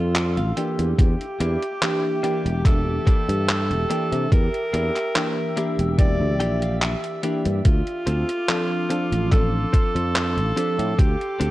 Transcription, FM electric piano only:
Already playing: F3 C4 D4 A4
0.56 E3 A#3 D4 G4
1.81 E3 A#3 D4 G4
2.23 E3 A#3 D4 G4
2.64 E3 A#3 D4 G4
3.90 E3 A#3 D4 G4
5.15 E3 A#3 D4 G4
5.56 E3 A#3 D4 G4
5.97 E3 A#3 D4 G4
7.23 E3 A#3 D4 G4
8.48 F3 C4 D4 A4
8.90 F3 C4 D4 A4
9.30 F3 C4 D4 A4
10.56 F3 C4 D4 A4

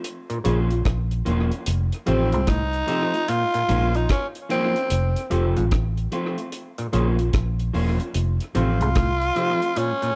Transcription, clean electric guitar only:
0.45 F3 A#3 C#4 F4
1.25 F3 A#3 C#4 F4
2.06 F3 A3 C4 F4
2.87 F3 A3 C4 F4
3.69 F3 A#3 C#4 F4
4.49 F3 A#3 C#4 F4
5.30 F3 A3 C4 F4
6.12 F3 A3 C4 F4
6.93 F3 A#3 C#4 F4
7.73 F3 A#3 C#4 F4
8.55 F3 A3 C4 F4
9.36 F3 A3 C4 F4

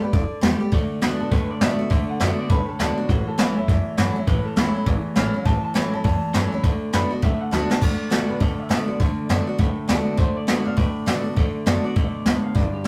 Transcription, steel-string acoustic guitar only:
Already playing: G2
0.02 B3 G4
0.13 D3
0.41 D3 G3 B3 G4
0.60 B3 G4
0.72 D3
1.01 D3 A3 D4 F#4
1.20 D4 F#4
1.31 A2
1.61 D3 A3 D4 F#4
1.79 D4 F#4
1.90 D3
2.20 D3 A3 D4 F#4
2.50 A2
2.79 D3 A3 D4 F#4
2.98 D4 F#4
3.38 E3 A3 C#4 E4
3.57 C#4 E4
3.69 E2
3.97 E3 A3 C#4 E4
4.16 C#4 E4
4.28 A2
4.56 E3 A3 C#4 E4
4.74 C#4 E4
4.86 E2
5.15 E3 A3 C#4 E4
5.34 C#4 E4
5.45 A2
5.74 E3 A3 C#4 E4
5.93 C#4 E4
6.04 E2
6.34 E3 A3 C#4 E4
6.52 C#4 E4
6.64 D3
6.93 D3 A3 D4 F#4
7.10 D4 F#4
7.22 A2
7.51 D3 A3 D4 F#4
7.70 D4 F#4
7.81 D3
8.10 D3 A3 D4 F#4
8.28 D4 F#4
8.40 A2
8.69 D3 A3 D4 F#4
8.88 D4 F#4
9.00 D3
9.29 D3 A3 D4 F#4
9.47 D4 F#4
9.59 A2
9.88 D3 A3 D4 F#4
10.17 D3
10.47 D3 A3 D4 F#4
10.65 D4 F#4
10.77 A2
11.06 D3 A3 D4 F#4
11.24 D4 F#4
11.36 D3
11.66 D3 A3 D4 F#4
11.84 D4 F#4
11.96 B2
12.26 A2
12.55 G2
12.84 D3

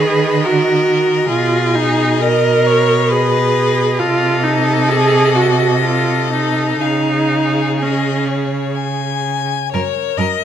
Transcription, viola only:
Already playing: G#4
0.45 F#4
1.29 F4
1.75 D#4
2.23 A#4
3.11 G#4
3.99 F4
4.44 D#4
4.89 G#4
5.36 F#4
5.82 F4
6.32 D#4
6.82 D#4
7.82 C#4
9.75 A#4

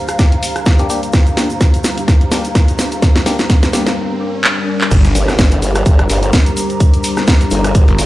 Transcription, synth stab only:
0.19 A#3 D4 G4
0.79 A#3 D4 G4
0.90 A#3 D4 G4
1.37 A#3 D4 G4
2.32 A#3 D4 G4
3.26 A#3 D4 G4
3.73 A#3 D4 G4

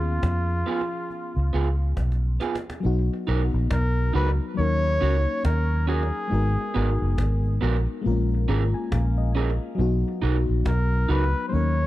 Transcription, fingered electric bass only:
Already playing: D#2
0.23 F2
1.36 C#2
1.54 C#2
1.97 B1
2.85 B1
3.28 B1
3.54 A#1
3.71 B1
4.15 C#2
4.58 D#2
5.02 C#2
5.45 D#2
6.32 G#1
6.76 G#1
7.02 F#1
7.18 G#1
7.62 A#1
8.06 A#1
8.49 G#1
8.92 A#1
9.79 B1
10.23 B1
10.49 A#1
10.66 B1
11.10 C#2
11.53 D#2

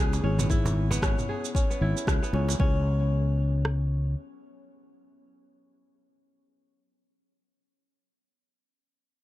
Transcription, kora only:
Already playing: B3 C#4 E4 G#4
0.24 C#4
0.39 B3
0.50 E4
0.91 B3
1.02 C#4
1.29 G#4
1.55 C#4
1.70 B3
1.82 E4
2.23 B3
2.34 C#4
2.60 C#4

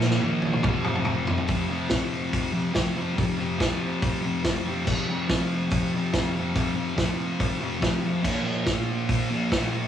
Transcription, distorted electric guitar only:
Already playing: A#2 F3 A#3
0.21 A#2 F3 A#3
0.63 F2 C3
0.67 F3
1.28 F2 C3 F3
1.48 F2 C3 F3
1.68 C3 F3
1.89 F2 C3 F3
2.52 C3 F3
2.73 F2 C3 F3
2.93 C3 F3
3.16 F2 C3
3.20 F3
3.37 C3 F3
3.58 F2 C3 F3
4.22 C3 F3
4.43 F2 C3 F3
4.65 C3 F3
4.86 F2 C3 F3
5.08 C3 F3
5.28 F2 C3 F3
5.94 C3 F3
6.14 F2 C3 F3
6.35 C3 F3
6.55 F2 C3 F3
6.75 C3 F3
6.96 F2 C3 F3
7.60 C3 F3
7.80 F2 C3 F3
8.03 C3 F3
8.22 A#2 F3 A#3
8.44 F3 A#3
8.65 A#2 F3 A#3
9.30 F3 A#3
9.51 A#2 F3 A#3
9.72 F3 A#3

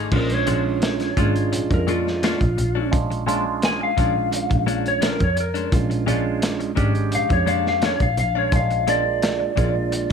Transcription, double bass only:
0.12 A#1
0.31 A#1
0.48 A#1
1.17 G#1
1.53 A#1
1.71 F2
2.41 A#1
2.58 A#1
2.93 A#1
3.98 A#1
4.51 A#1
5.20 F2
5.72 A#1
5.90 A#1
6.07 A#1
6.77 G#1
7.13 A#1
7.31 F2
8.00 A#1
8.18 A#1
8.53 A#1
9.57 A#1

